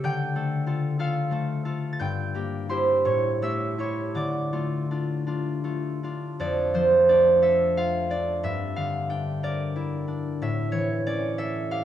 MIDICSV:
0, 0, Header, 1, 2, 480
1, 0, Start_track
1, 0, Key_signature, -1, "minor"
1, 0, Tempo, 643087
1, 28, Time_signature, 6, 3, 24, 8
1, 989, Tempo, 687285
1, 1949, Tempo, 721154
1, 2909, Tempo, 746269
1, 4349, Tempo, 688863
1, 5309, Tempo, 666667
1, 6749, Tempo, 647948
1, 8291, End_track
2, 0, Start_track
2, 0, Title_t, "Harp"
2, 0, Program_c, 0, 46
2, 0, Note_on_c, 0, 57, 46
2, 0, Note_on_c, 0, 69, 47
2, 0, Note_on_c, 0, 81, 71
2, 0, Note_on_c, 0, 93, 85
2, 28, Note_on_c, 0, 50, 69
2, 31, Note_on_c, 0, 91, 89
2, 35, Note_on_c, 0, 79, 69
2, 257, Note_off_c, 0, 57, 0
2, 260, Note_off_c, 0, 69, 0
2, 265, Note_on_c, 0, 57, 45
2, 270, Note_on_c, 0, 69, 51
2, 492, Note_off_c, 0, 69, 0
2, 497, Note_on_c, 0, 65, 47
2, 502, Note_on_c, 0, 69, 50
2, 731, Note_off_c, 0, 65, 0
2, 737, Note_off_c, 0, 69, 0
2, 740, Note_on_c, 0, 65, 49
2, 743, Note_on_c, 0, 69, 55
2, 745, Note_on_c, 0, 89, 83
2, 749, Note_on_c, 0, 77, 62
2, 968, Note_off_c, 0, 57, 0
2, 977, Note_on_c, 0, 57, 45
2, 978, Note_off_c, 0, 69, 0
2, 987, Note_on_c, 0, 69, 51
2, 1208, Note_off_c, 0, 69, 0
2, 1212, Note_off_c, 0, 65, 0
2, 1217, Note_on_c, 0, 69, 49
2, 1221, Note_on_c, 0, 65, 43
2, 1244, Note_off_c, 0, 91, 0
2, 1401, Note_off_c, 0, 93, 0
2, 1409, Note_on_c, 0, 93, 67
2, 1457, Note_on_c, 0, 91, 85
2, 1460, Note_off_c, 0, 79, 0
2, 1461, Note_on_c, 0, 43, 59
2, 1468, Note_on_c, 0, 79, 67
2, 1473, Note_off_c, 0, 57, 0
2, 1477, Note_off_c, 0, 69, 0
2, 1478, Note_off_c, 0, 89, 0
2, 1479, Note_off_c, 0, 65, 0
2, 1480, Note_off_c, 0, 50, 0
2, 1481, Note_off_c, 0, 77, 0
2, 1484, Note_off_c, 0, 81, 0
2, 1495, Note_off_c, 0, 93, 0
2, 1701, Note_on_c, 0, 58, 42
2, 1708, Note_on_c, 0, 67, 51
2, 1941, Note_off_c, 0, 67, 0
2, 1943, Note_on_c, 0, 64, 41
2, 1946, Note_on_c, 0, 84, 67
2, 1950, Note_on_c, 0, 67, 46
2, 1953, Note_on_c, 0, 72, 51
2, 2181, Note_on_c, 0, 45, 55
2, 2185, Note_on_c, 0, 85, 64
2, 2191, Note_on_c, 0, 73, 44
2, 2201, Note_off_c, 0, 58, 0
2, 2204, Note_off_c, 0, 43, 0
2, 2205, Note_off_c, 0, 72, 0
2, 2348, Note_off_c, 0, 84, 0
2, 2421, Note_off_c, 0, 67, 0
2, 2429, Note_on_c, 0, 57, 44
2, 2431, Note_on_c, 0, 67, 46
2, 2432, Note_on_c, 0, 88, 69
2, 2438, Note_on_c, 0, 76, 51
2, 2661, Note_off_c, 0, 64, 0
2, 2667, Note_off_c, 0, 67, 0
2, 2667, Note_off_c, 0, 85, 0
2, 2669, Note_on_c, 0, 64, 37
2, 2674, Note_off_c, 0, 73, 0
2, 2674, Note_on_c, 0, 67, 43
2, 2676, Note_on_c, 0, 85, 63
2, 2682, Note_on_c, 0, 73, 48
2, 2912, Note_on_c, 0, 50, 50
2, 2915, Note_on_c, 0, 86, 65
2, 2924, Note_on_c, 0, 74, 45
2, 2928, Note_off_c, 0, 45, 0
2, 2928, Note_off_c, 0, 91, 0
2, 2932, Note_off_c, 0, 64, 0
2, 2933, Note_off_c, 0, 79, 0
2, 2933, Note_off_c, 0, 88, 0
2, 2934, Note_off_c, 0, 67, 0
2, 2934, Note_off_c, 0, 85, 0
2, 2936, Note_off_c, 0, 76, 0
2, 2938, Note_off_c, 0, 73, 0
2, 3151, Note_off_c, 0, 57, 0
2, 3157, Note_on_c, 0, 57, 41
2, 3158, Note_on_c, 0, 65, 43
2, 3398, Note_off_c, 0, 65, 0
2, 3402, Note_on_c, 0, 62, 41
2, 3408, Note_on_c, 0, 65, 39
2, 3625, Note_off_c, 0, 62, 0
2, 3632, Note_off_c, 0, 65, 0
2, 3632, Note_on_c, 0, 62, 41
2, 3639, Note_on_c, 0, 65, 43
2, 3865, Note_off_c, 0, 57, 0
2, 3869, Note_off_c, 0, 65, 0
2, 3872, Note_on_c, 0, 57, 42
2, 3877, Note_on_c, 0, 65, 42
2, 4119, Note_off_c, 0, 62, 0
2, 4122, Note_off_c, 0, 65, 0
2, 4125, Note_on_c, 0, 62, 32
2, 4131, Note_on_c, 0, 65, 40
2, 4355, Note_off_c, 0, 74, 0
2, 4359, Note_on_c, 0, 41, 52
2, 4365, Note_on_c, 0, 74, 69
2, 4370, Note_off_c, 0, 50, 0
2, 4599, Note_on_c, 0, 53, 46
2, 4604, Note_on_c, 0, 72, 68
2, 4833, Note_off_c, 0, 74, 0
2, 4835, Note_off_c, 0, 62, 0
2, 4842, Note_on_c, 0, 62, 43
2, 4843, Note_on_c, 0, 74, 67
2, 5002, Note_off_c, 0, 72, 0
2, 5074, Note_on_c, 0, 69, 44
2, 5078, Note_on_c, 0, 76, 74
2, 5316, Note_off_c, 0, 65, 0
2, 5319, Note_on_c, 0, 77, 77
2, 5325, Note_on_c, 0, 65, 47
2, 5485, Note_off_c, 0, 76, 0
2, 5520, Note_off_c, 0, 86, 0
2, 5549, Note_off_c, 0, 62, 0
2, 5549, Note_off_c, 0, 74, 0
2, 5556, Note_on_c, 0, 62, 43
2, 5560, Note_on_c, 0, 74, 64
2, 5795, Note_on_c, 0, 43, 58
2, 5799, Note_on_c, 0, 76, 75
2, 5814, Note_off_c, 0, 57, 0
2, 5818, Note_off_c, 0, 69, 0
2, 5819, Note_off_c, 0, 41, 0
2, 5819, Note_off_c, 0, 77, 0
2, 5821, Note_off_c, 0, 53, 0
2, 5822, Note_off_c, 0, 65, 0
2, 6033, Note_on_c, 0, 77, 72
2, 6036, Note_on_c, 0, 50, 42
2, 6262, Note_off_c, 0, 62, 0
2, 6271, Note_on_c, 0, 62, 41
2, 6275, Note_on_c, 0, 79, 76
2, 6440, Note_off_c, 0, 77, 0
2, 6509, Note_off_c, 0, 74, 0
2, 6514, Note_on_c, 0, 70, 46
2, 6518, Note_on_c, 0, 74, 77
2, 6749, Note_on_c, 0, 64, 52
2, 6976, Note_off_c, 0, 62, 0
2, 6985, Note_on_c, 0, 62, 46
2, 7233, Note_off_c, 0, 76, 0
2, 7237, Note_on_c, 0, 45, 56
2, 7242, Note_on_c, 0, 76, 77
2, 7246, Note_off_c, 0, 62, 0
2, 7250, Note_off_c, 0, 43, 0
2, 7250, Note_off_c, 0, 50, 0
2, 7250, Note_off_c, 0, 70, 0
2, 7252, Note_off_c, 0, 74, 0
2, 7457, Note_on_c, 0, 52, 44
2, 7461, Note_on_c, 0, 73, 73
2, 7717, Note_on_c, 0, 61, 48
2, 7717, Note_on_c, 0, 74, 75
2, 7943, Note_off_c, 0, 76, 0
2, 7952, Note_on_c, 0, 76, 77
2, 7956, Note_on_c, 0, 69, 53
2, 8123, Note_off_c, 0, 74, 0
2, 8195, Note_on_c, 0, 67, 51
2, 8197, Note_on_c, 0, 77, 77
2, 8291, Note_off_c, 0, 45, 0
2, 8291, Note_off_c, 0, 52, 0
2, 8291, Note_off_c, 0, 61, 0
2, 8291, Note_off_c, 0, 64, 0
2, 8291, Note_off_c, 0, 67, 0
2, 8291, Note_off_c, 0, 69, 0
2, 8291, Note_off_c, 0, 73, 0
2, 8291, Note_off_c, 0, 76, 0
2, 8291, Note_off_c, 0, 77, 0
2, 8291, Note_off_c, 0, 79, 0
2, 8291, End_track
0, 0, End_of_file